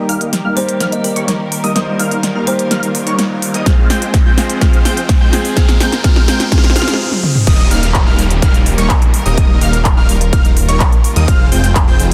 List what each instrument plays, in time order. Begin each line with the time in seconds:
Already playing: string section D#3 G3 A#3 G4 A#4, grand piano G3 A#3 D#4 G4, riser
0.09 supersaw synth G3 A#3 D#4 A#4 F5, digital synth lead F6, open hi-hat
0.21 closed hi-hat
0.33 snare, closed hi-hat
0.45 supersaw synth G3 A#3 D#4 A#4 F5, digital synth lead F6
0.55 grand piano G3 A#3 D#4 G4, kalimba C5, open hi-hat
0.69 closed hi-hat
0.80 supersaw synth G3 A#3 D#4 A#4 F5, digital synth lead F6, snare, closed hi-hat
0.92 kalimba D#5, closed hi-hat
1.04 kalimba A#4, open hi-hat
1.16 supersaw synth G3 A#3 D#4 A#4 C#5, digital synth lead C#6, closed hi-hat
1.28 snare, closed hi-hat
1.52 open hi-hat
1.64 supersaw synth G3 A#3 D#4 A#4 D#5, digital synth lead D#6, open hi-hat
1.75 grand piano G3 A#3 D#4 C5, supersaw synth G3 A#3 D#4 A#4 D#5, string section F4, digital synth lead D#6, snare, closed hi-hat
1.99 supersaw synth G3 A#3 D#4 A#4 F5, digital synth lead F6, open hi-hat
2.11 closed hi-hat
2.23 snare, closed hi-hat
2.35 supersaw synth G3 A#3 D#4 A#4 F5, digital synth lead F6
2.46 grand piano G3 A#3 D#4 G4, kalimba C5, open hi-hat
2.59 closed hi-hat
2.71 supersaw synth G3 A#3 D#4 A#4 F5, digital synth lead F6, snare, closed hi-hat
2.83 closed hi-hat
2.95 open hi-hat
3.07 supersaw synth G3 A#3 D#4 A#4 C#5, digital synth lead C#6, closed hi-hat
3.19 snare, closed hi-hat
3.42 open hi-hat
3.54 supersaw synth G3 A#3 D#4 A#4 D#5, digital synth lead D#6, closed hi-hat
3.65 string section F3 G#3 C4 G#4 C5, grand piano G#3 C4 F4 G#4, supersaw synth G#3 C4 F4 C5 F5, digital synth lead F6, kick, snare, closed hi-hat
3.90 supersaw synth G#3 C4 F4 C5 G5, digital synth lead G6, snare, open hi-hat
4.02 closed hi-hat
4.14 kick, snare, closed hi-hat
4.26 supersaw synth G#3 C4 F4 C5 G5, digital synth lead G6
4.36 grand piano G#3 C4 F4 G#4, snare, open hi-hat
4.50 closed hi-hat
4.60 grand piano G#3 C4 F4 G#4, supersaw synth G#3 C4 F4 C5 F5, digital synth lead F6, kick, snare, closed hi-hat
4.73 closed hi-hat
4.85 supersaw synth G#3 C4 F4 C5 G5, digital synth lead G6, snare, open hi-hat
4.97 closed hi-hat
5.09 kick, snare, closed hi-hat
5.21 supersaw synth G#3 C4 F4 C5 G5, digital synth lead G6
5.32 grand piano G#3 C4 F4 G#4, snare, open hi-hat
5.45 open hi-hat
5.55 grand piano G#3 C4 F4, supersaw synth G#3 C4 F4 C5 F5, string section A#4, digital synth lead F6, kick, snare, closed hi-hat
5.69 snare, closed hi-hat
5.80 supersaw synth G#3 C4 F4 C5 G5, digital synth lead G6, snare, open hi-hat
5.92 snare, closed hi-hat
6.03 grand piano G#3 C4 F4 G#4, supersaw synth G#3 C4 F4 C5 F5, digital synth lead F6, kick, snare, closed hi-hat
6.16 snare
6.28 supersaw synth G#3 C4 F4 C5 G5, digital synth lead G6, snare, open hi-hat
6.40 snare, closed hi-hat
6.51 grand piano G#3 C4 F4 G#4, supersaw synth G#3 C4 F4 C5 F5, digital synth lead F6, kick, snare, closed hi-hat
6.58 snare
6.64 snare, closed hi-hat
6.70 snare
6.74 grand piano G#3 C4 F4 G#4, supersaw synth G#3 C4 F4 C5 F5, digital synth lead F6, snare, open hi-hat
6.82 snare
6.88 snare, closed hi-hat
6.94 snare
7.11 high tom
7.23 mid tom
7.35 mid tom
7.47 detuned saw bass D#1, string section D#3 G3 A#3 G4 A#4, supersaw synth G3 A#3 D#4 A#4 D#5, digital synth lead D#6, kick, closed hi-hat, crash, downlifter
7.71 detuned saw bass D#1, supersaw synth G3 A#3 D#4 A#4 F5, digital synth lead F6, open hi-hat
7.83 closed hi-hat
7.94 kick, clap, closed hi-hat
8.07 detuned saw bass D#1, supersaw synth G3 A#3 D#4 A#4 F5, digital synth lead F6
8.19 open hi-hat
8.30 closed hi-hat
8.42 detuned saw bass D#1, supersaw synth G3 A#3 D#4 A#4 F5, digital synth lead F6, kick, closed hi-hat
8.54 closed hi-hat
8.66 open hi-hat
8.78 detuned saw bass D#1, supersaw synth G3 A#3 D#4 A#4 C#5, digital synth lead C#6, closed hi-hat
8.90 kick, clap, closed hi-hat
9.02 closed hi-hat
9.14 open hi-hat
9.26 detuned saw bass D#1, supersaw synth G3 A#3 D#4 A#4 D#5, digital synth lead D#6, open hi-hat
9.38 detuned saw bass D#1, supersaw synth G3 A#3 D#4 A#4 D#5, string section F4, digital synth lead D#6, kick, closed hi-hat
9.61 detuned saw bass D#1, supersaw synth G3 A#3 D#4 A#4 F5, digital synth lead F6, open hi-hat
9.73 closed hi-hat
9.85 kick, clap, closed hi-hat
9.97 detuned saw bass D#1, supersaw synth G3 A#3 D#4 A#4 F5, digital synth lead F6, clap
10.09 open hi-hat
10.21 closed hi-hat
10.33 detuned saw bass D#1, supersaw synth G3 A#3 D#4 A#4 F5, digital synth lead F6, kick, closed hi-hat
10.45 closed hi-hat
10.57 open hi-hat
10.68 detuned saw bass D#1, supersaw synth G3 A#3 D#4 A#4 C#5, digital synth lead C#6, closed hi-hat
10.80 kick, clap, closed hi-hat
10.92 closed hi-hat
11.04 open hi-hat
11.16 detuned saw bass D#2, supersaw synth G3 A#3 D#4 A#4 D#5, digital synth lead D#6, closed hi-hat
11.28 detuned saw bass F1, string section C3 F3 G#3 G#4, supersaw synth G#3 C4 F4 C5 F5, digital synth lead F6, kick, closed hi-hat
11.52 detuned saw bass F1, supersaw synth G#3 C4 F4 C5 G5, digital synth lead G6, open hi-hat
11.64 closed hi-hat
11.75 kick, clap, closed hi-hat
11.88 detuned saw bass F1, supersaw synth G#3 C4 F4 C5 G5, digital synth lead G6
12.00 open hi-hat